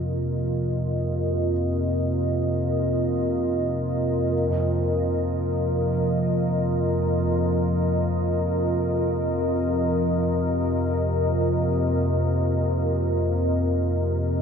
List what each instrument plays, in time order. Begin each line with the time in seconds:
Already playing: synth drone F2 C3, grand piano F4, ambient pad F4 A#4 D#5, singing bowl A#4
4.32 singing bowl A#4
4.47 grand piano F2
13.15 grand piano F4